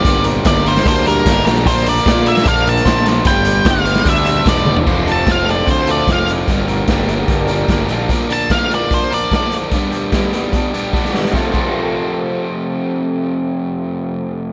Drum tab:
CC |----------------|----------------|----------------|x---------------|
HH |x-x-xxxxxxx-x-xx|xxxxx-xxxxxxxxx-|x-x-x-xxx-x-xx--|--x-x-x-x-x-x-x-|
SD |----o--o----o-o-|----o--o----o-o-|----o--o----o---|----o-------o---|
T1 |----------------|----------------|--------------o-|----------------|
FT |----------------|----------------|---------------o|----------------|
BD |o---o---o---o---|o---o---o---o---|o---o---o---o---|o---o---o---o---|

CC |----------------|----------------|----------------|--x-------------|
HH |x-x-x-x-x-x-x-x-|x-x-x-x-x-x-x-x-|x-x-x-x-x-x-----|----------------|
SD |----o-------o---|----o-------o---|----o-------oooo|o---------------|
T1 |----------------|----------------|----------------|----------------|
FT |----------------|----------------|----------------|----------------|
BD |o---o---o---o---|o---o---o---o---|o---o---o---o---|o-o-------------|

CC |----------------|
HH |----------------|
SD |----------------|
T1 |----------------|
FT |----------------|
BD |----------------|